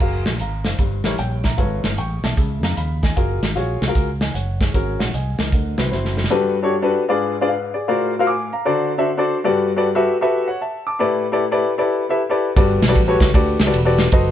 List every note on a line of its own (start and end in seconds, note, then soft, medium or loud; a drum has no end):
0.00 0.22 F#1 medium
0.00 0.30 F#4 medium
0.00 0.30 G#4 medium
0.00 0.30 A#4 medium
0.00 0.31 F5 medium
0.00 0.24 A#5 medium
0.00 kick medium
0.00 crash medium
0.26 0.38 A#1 medium
0.26 snare loud
0.26 closed hi-hat medium
0.40 0.65 G#1 medium
0.40 0.64 F5 soft
0.40 0.64 A#5 medium
0.40 closed hi-hat medium
0.65 0.77 F#1 medium
0.65 1.04 C5 soft
0.65 1.03 F5 medium
0.65 snare medium
0.65 closed hi-hat medium
0.79 1.01 G1 medium
0.79 1.40 G2 medium
0.79 kick medium
0.79 closed hi-hat medium
1.04 1.17 A1 medium
1.04 1.14 E4 medium
1.04 1.14 G4 medium
1.04 1.14 A#4 medium
1.04 1.14 C#5 medium
1.04 snare loud
1.04 closed hi-hat medium
1.18 1.60 A#1 medium
1.18 1.43 C#5 soft
1.18 1.43 G5 medium
1.18 closed hi-hat medium
1.44 1.82 E5 medium
1.44 1.82 A#5 medium
1.44 kick medium
1.44 snare medium
1.44 closed hi-hat medium
1.57 1.80 G#1 medium
1.57 2.19 G#2 medium
1.57 1.88 F4 medium
1.57 1.88 A4 medium
1.57 1.88 B4 medium
1.57 1.88 C#5 medium
1.57 kick medium
1.57 closed hi-hat medium
1.84 1.96 G1 medium
1.84 snare loud
1.84 closed hi-hat medium
1.98 2.20 A1 medium
1.98 2.22 G5 soft
1.98 2.22 C#6 medium
1.98 closed hi-hat medium
2.24 2.35 B1 medium
2.24 2.61 E5 medium
2.24 2.61 A5 medium
2.24 snare loud
2.24 closed hi-hat medium
2.37 2.64 C#2 medium
2.37 2.98 C#3 medium
2.37 kick loud
2.37 closed hi-hat medium
2.63 2.75 F2 medium
2.63 2.76 F5 soft
2.63 2.76 A#5 medium
2.63 snare loud
2.63 closed hi-hat medium
2.77 3.11 D#2 medium
2.77 3.01 F5 soft
2.77 3.01 B5 medium
2.77 closed hi-hat medium
3.03 3.40 D#5 medium
3.03 3.40 G#5 medium
3.03 kick medium
3.03 snare medium
3.03 closed hi-hat medium
3.16 3.38 F#1 medium
3.16 3.46 F4 medium
3.16 3.46 F#4 medium
3.16 3.46 G#4 medium
3.16 3.47 A#4 medium
3.16 kick medium
3.16 closed hi-hat medium
3.42 3.54 G#1 medium
3.42 snare loud
3.42 closed hi-hat medium
3.56 3.78 A#1 medium
3.56 3.81 F4 medium
3.56 3.81 F#4 medium
3.56 3.81 G#4 medium
3.56 3.81 C#5 medium
3.56 closed hi-hat medium
3.82 3.93 C2 medium
3.82 snare loud
3.82 closed hi-hat medium
3.88 4.07 F4 medium
3.88 4.07 F#4 medium
3.88 4.07 G#4 medium
3.88 4.08 A#4 medium
3.95 4.29 C#2 medium
3.95 kick loud
3.95 closed hi-hat medium
4.21 4.34 D#5 soft
4.21 4.34 G#5 medium
4.21 snare loud
4.21 closed hi-hat medium
4.34 4.68 F#1 medium
4.34 4.59 C#5 medium
4.34 4.59 F#5 medium
4.34 closed hi-hat medium
4.61 4.73 G#4 soft
4.61 4.98 C#5 medium
4.61 kick medium
4.61 snare medium
4.61 closed hi-hat medium
4.74 4.96 G#1 medium
4.74 5.35 G#2 medium
4.74 5.04 C#4 medium
4.74 5.04 F#4 medium
4.74 5.04 G#4 medium
4.74 5.00 A#4 medium
4.74 kick medium
4.74 closed hi-hat medium
4.99 5.12 A#1 medium
4.99 5.13 C#5 soft
4.99 5.13 F#5 medium
4.99 snare loud
4.99 closed hi-hat medium
5.14 5.35 C2 medium
5.14 5.38 D#5 medium
5.14 5.38 G#5 medium
5.14 closed hi-hat medium
5.39 5.51 C#2 medium
5.39 5.77 A#4 soft
5.39 5.77 D#5 soft
5.39 snare loud
5.39 closed hi-hat medium
5.52 5.74 D2 medium
5.52 6.14 D3 medium
5.52 kick loud
5.52 closed hi-hat medium
5.78 5.90 C2 medium
5.78 5.87 C4 medium
5.78 5.87 E4 medium
5.78 5.87 F#4 medium
5.78 5.87 B4 medium
5.78 snare loud
5.78 closed hi-hat medium
5.91 6.25 F#1 medium
5.91 6.21 C4 medium
5.91 6.21 E4 medium
5.91 6.21 F#4 medium
5.91 6.21 C5 medium
5.91 snare soft
6.05 snare medium
6.17 snare medium
6.24 snare medium
6.30 6.92 G2 medium
6.30 6.55 D4 medium
6.30 6.56 F#4 medium
6.30 6.56 G4 medium
6.30 6.56 A4 medium
6.30 6.56 B4 medium
6.63 6.74 D4 medium
6.63 6.74 F#4 medium
6.63 6.74 G4 medium
6.63 6.74 A4 medium
6.63 6.74 C#5 loud
6.82 7.02 D4 medium
6.82 7.02 F#4 medium
6.82 7.02 G4 medium
6.82 7.02 A4 medium
6.82 7.02 B4 loud
7.09 7.70 G#2 medium
7.09 7.34 D4 medium
7.09 7.34 F4 medium
7.09 7.34 G#4 medium
7.09 7.34 B4 medium
7.09 7.34 D5 medium
7.41 7.52 D4 medium
7.41 7.52 F4 medium
7.41 7.48 G#4 medium
7.41 7.48 B4 medium
7.41 7.49 D5 medium
7.49 7.73 B4 medium
7.49 7.73 F5 medium
7.74 8.11 G#4 medium
7.74 7.87 D5 medium
7.88 8.48 A2 medium
7.88 8.12 F4 medium
7.88 8.13 F#4 medium
7.88 8.13 A#4 medium
7.88 8.13 C5 medium
7.88 8.13 D5 medium
8.19 8.30 F4 medium
8.19 8.30 F#4 medium
8.19 8.30 A#4 medium
8.19 8.31 C5 medium
8.19 8.27 F5 loud
8.27 8.51 G#5 medium
8.27 8.51 D6 medium
8.53 8.90 F5 medium
8.53 8.89 A#5 medium
8.65 9.26 D3 medium
8.65 8.90 D4 medium
8.65 8.90 F#4 medium
8.65 8.90 A4 medium
8.65 8.90 C5 medium
8.65 8.91 D5 loud
8.98 9.09 D4 medium
8.98 9.09 F#4 medium
8.98 9.09 A4 medium
8.98 9.09 C5 medium
8.98 9.09 E5 loud
9.17 9.37 D4 medium
9.17 9.37 F#4 medium
9.17 9.37 A4 medium
9.17 9.37 C5 medium
9.17 9.37 D5 loud
9.44 10.05 G2 medium
9.44 9.69 F#4 medium
9.44 9.69 G4 medium
9.44 9.69 A4 medium
9.44 9.69 B4 medium
9.44 9.69 D5 loud
9.76 9.87 F#4 medium
9.76 9.87 G4 medium
9.76 9.87 A4 medium
9.76 9.87 B4 medium
9.76 9.87 D5 loud
9.95 10.14 F#4 medium
9.95 10.15 G4 medium
9.95 10.15 A4 medium
9.95 10.15 B4 medium
9.95 10.15 E5 loud
10.21 10.46 F#4 medium
10.21 10.46 G4 medium
10.21 10.46 A4 medium
10.21 10.47 B4 medium
10.21 10.47 E5 loud
10.48 10.61 C#5 medium
10.48 10.60 F#5 medium
10.61 10.85 E5 medium
10.61 10.85 A5 medium
10.87 11.24 A5 medium
10.87 11.24 D6 medium
10.99 11.60 A2 medium
10.99 11.24 E4 medium
10.99 11.24 G4 medium
10.99 11.25 A4 medium
10.99 11.25 B4 medium
10.99 11.25 D5 loud
11.32 11.43 E4 medium
11.32 11.43 G4 medium
11.32 11.43 A4 medium
11.32 11.43 B4 medium
11.32 11.43 D5 loud
11.52 11.71 E4 medium
11.52 11.71 G4 medium
11.52 11.71 A4 medium
11.52 11.71 B4 medium
11.52 11.71 D5 loud
11.78 12.03 E4 medium
11.78 12.03 G4 medium
11.78 12.03 A4 medium
11.78 12.03 B4 medium
11.78 12.03 D5 medium
12.09 12.20 E4 medium
12.09 12.21 G4 medium
12.09 12.21 A4 medium
12.09 12.21 B4 medium
12.09 12.21 E5 medium
12.30 12.49 E4 medium
12.30 12.49 G4 medium
12.30 12.49 A4 medium
12.30 12.49 B4 medium
12.30 12.49 D5 loud
12.56 12.78 G1 loud
12.56 13.17 G2 medium
12.56 12.81 F#4 medium
12.56 12.81 G4 medium
12.56 12.81 A4 medium
12.56 12.81 B4 medium
12.56 12.81 D5 medium
12.56 kick loud
12.56 ride medium
12.82 12.95 B1 medium
12.82 snare loud
12.82 ride medium
12.88 12.99 F#4 medium
12.88 12.99 G4 medium
12.88 12.99 A4 medium
12.88 12.99 B4 medium
12.88 12.99 D5 medium
12.95 13.17 A1 medium
12.95 kick medium
12.95 ride medium
13.08 13.27 F#4 medium
13.08 13.27 G4 medium
13.08 13.27 A4 medium
13.08 13.27 B4 medium
13.08 13.28 C#5 loud
13.20 13.32 C#2 medium
13.20 kick loud
13.20 snare loud
13.20 ride medium
13.34 13.56 D2 loud
13.34 13.59 F#4 medium
13.34 13.59 G4 medium
13.34 13.59 A4 medium
13.34 13.59 B4 medium
13.34 13.59 D5 medium
13.34 kick loud
13.34 ride medium
13.60 13.71 C#2 loud
13.60 snare loud
13.60 ride medium
13.66 13.77 F#4 medium
13.66 13.77 G4 medium
13.66 13.77 A4 medium
13.66 13.77 B4 medium
13.66 13.77 D5 medium
13.74 14.07 E1 loud
13.74 ride medium
13.85 14.05 F#4 medium
13.85 14.05 G4 medium
13.85 14.05 A4 medium
13.85 14.05 B4 medium
13.85 14.05 D5 loud
13.98 snare loud
13.98 ride medium
14.12 14.31 F#1 loud
14.12 14.31 F#4 medium
14.12 14.31 A4 medium
14.12 14.31 B4 medium
14.12 14.31 C5 medium
14.12 14.31 D#5 medium
14.12 kick loud
14.12 ride medium